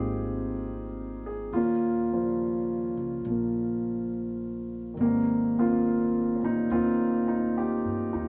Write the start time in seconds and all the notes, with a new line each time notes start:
Already playing: G#1 D#3 F3 G3 G#3 A#3 C4 D#4 F4 G4 G#4
1.26 G#4
1.53 D#2 A#3 C#4 F4
2.11 C#3 F3 G3 C5
2.97 C#2
3.25 A#1 F3
3.29 A#3
4.94 G#1 D#3 G3
5.00 D#3 A#3
5.05 C4
5.59 A#3 C4 F4
6.35 C#4
6.40 A1 G3 A#3
6.44 D#4
6.70 D#2 A#3 C4 F4
7.28 D#4
7.58 G4
7.85 G2
8.13 D#2 D#4